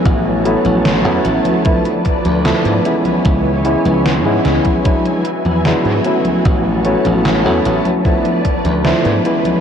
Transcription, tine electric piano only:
\new Staff \with { instrumentName = "Tine electric piano" } { \time 4/4 \key a \major \tempo 4 = 75 <fis a b cis' e'>8 <fis a b cis' e'>8. <fis a b cis' e'>8. <f a b d' e'>8 r8 <f a b d' e'>8 <e gis b cis' e'>8~ | <e gis b cis' e'>8 <e gis b cis' e'>8. <e gis b cis' e'>8. <fis gis b d' e'>8 r8 <fis gis b d' e'>8 <fis a b cis' e'>8~ | <fis a b cis' e'>8 <fis a b cis' e'>8. <fis a b cis' e'>8. <f a b d' e'>8 r8 <f a b d' e'>8 <e gis b cis' e'>8 | }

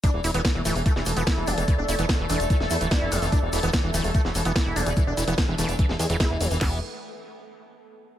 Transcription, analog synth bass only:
\new Staff \with { instrumentName = "Analog synth bass" } { \clef bass \time 4/4 \tempo 4 = 146 r16 e,,16 e,,16 e,,16 r16 e,,16 d,,16 e,,16 r16 e,,16 e,,16 e,,16 r16 e,,16 e,,16 e,,16 | r16 e,,16 e,,16 e,,16 r16 e,,16 e,,16 e,,16 r16 e,,16 e,16 d,,16 r16 f,,16 f,,16 f,,16 | r16 e,,16 e,,16 e,,16 r16 e,,16 d,,16 e,,16 r16 e,,16 e,,16 e,,16 r16 e,,16 e,,16 e,,16 | r16 e,,16 e,,16 e,,16 r16 e,,16 e,,16 e,,16 r16 e,,16 e,16 e,,16 r16 e,,16 e,,16 e,,16 |
e,,8 r2. r8 | }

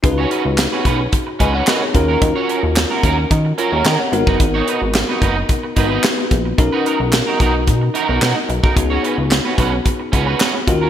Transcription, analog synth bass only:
\new Staff \with { instrumentName = "Analog synth bass" } { \clef bass \time 4/4 \key des \mixolydian \tempo 4 = 110 des,8 r16 des,8 r16 ces,8 r8 des,8 r8 ees,8 | ees,16 r8 ees,8 r16 ees,8 ees8 r16 ees,16 ees16 r16 aes,,16 ges,,16 | aes,,8 r16 aes,,8 r16 ges,,8 r8 aes,,8 r8 bes,,8 | b,,16 r8 b,,8 r16 b,,8 b,8 r16 b,,16 b,16 r16 b,,16 b,,16 |
des,8 r16 des,8 r16 ces,8 r8 des,8 r8 ees,8 | }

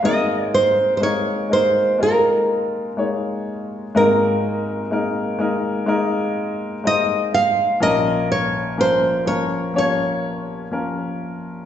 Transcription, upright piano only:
\new Staff \with { instrumentName = "Upright piano" } { \time 4/4 \key aes \major \tempo 4 = 62 << { <aes bes ees' bes'>4 <aes bes ees' bes'>8 <aes bes ees' bes'>8 <aes bes ees' f'>4 <aes bes ees' des''>4 | <aes bes ees' bes'>4 <aes bes ees' bes'>8 <aes bes ees' bes'>8 <aes bes ees' bes'>4 <aes bes ees' c''>4 | <f bes des' bes'>4 <f bes des' bes'>8 <f bes des' bes'>8 <f bes des' des''>4 <f bes des' bes'>4 | } \\ { <aes,, aes,>1 | <aes,, aes,>1 | <bes,, bes,>1 | } >> }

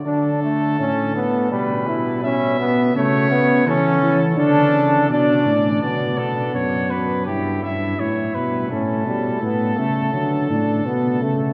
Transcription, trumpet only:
\new Staff \with { instrumentName = "Trumpet" } { \time 4/4 \key d \major \tempo 4 = 83 a'2 b'4 e''4 | cis''4 a'4 a'4 d''4 | d''8 a'8 cis''8 b'8 g'8 e''8 cis''8 b'8 | a'1 | }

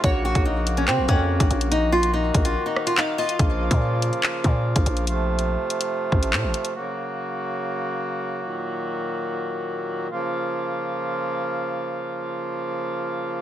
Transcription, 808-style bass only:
\new Staff \with { instrumentName = "808-style bass" } { \clef bass \time 4/4 \key bes \minor \tempo 4 = 143 bes,,8. bes,,4~ bes,,16 des16 bes,,16 f,8. bes,,16 bes,,8~ | bes,,4. bes,,8 r2 | bes,,8. bes,4 r8. bes,8. bes,,16 bes,,8~ | bes,,4~ bes,,16 r4 r16 a,,8 bes,16 a,,16 r8 |
r1 | r1 | r1 | r1 | }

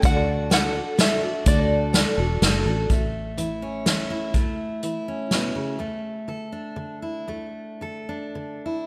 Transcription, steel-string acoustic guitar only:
\new Staff \with { instrumentName = "Steel-string acoustic guitar" } { \time 3/4 \key d \major \tempo 4 = 125 << { r2. | r2. | a4 e'8 cis'4 e'8 | a4 e'8 cis'4. |
a4 a'8 d'4 e'8 | a4 a'8 d'4 e'8 | } \\ { r2. | r2. | a,4 e4 e4 | a,4 e4 b,8 cis8 |
d,4 d4 d4 | d,4 d4 d4 | } >> }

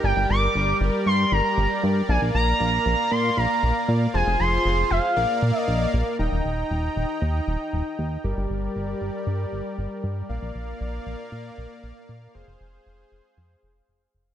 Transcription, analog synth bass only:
\new Staff \with { instrumentName = "Analog synth bass" } { \clef bass \time 4/4 \key bes \mixolydian \tempo 4 = 117 g,,16 g,,16 g,,16 r16 g,,16 r16 g,,16 r16 g,16 r16 g,,16 r16 g,,16 r16 g,16 r16 | bes,,16 bes,,16 bes,,16 r16 bes,,16 r16 bes,,16 r16 bes,16 r16 bes,,16 r16 bes,,16 r16 bes,16 r16 | f,,16 f,,16 f,,16 r16 f,,16 r16 f,,16 r16 bes,,16 r16 bes,16 r16 bes,,16 r16 bes,,16 r16 | ees,,16 ees,,16 ees,,16 r16 ees,,16 r16 ees,,16 r16 ees,16 r16 ees,,16 r16 ees,,16 r16 ees,16 r16 |
g,,16 g,,16 g,,16 r16 g,,16 r16 g,,16 r16 g,16 r16 g,,16 r16 g,,16 r16 g,16 r16 | bes,,16 bes,,16 bes,,16 r16 bes,,16 r16 bes,,16 r16 bes,16 r16 bes,,16 r16 bes,,16 r16 bes,16 r16 | f,,16 f,,16 f,,16 r16 f,,16 r16 f,,16 r16 f,16 r16 f,,16 r16 f,,16 r16 f,,16 r16 | }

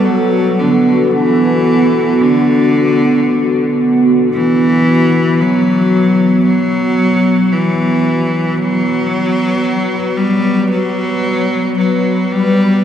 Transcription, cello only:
\new Staff \with { instrumentName = "Cello" } { \clef bass \time 4/4 \key b \minor \tempo 4 = 56 fis8 d8 e4 d4. r8 | e4 fis4 fis4 e4 | fis4. g8 fis4 fis8 g8 | }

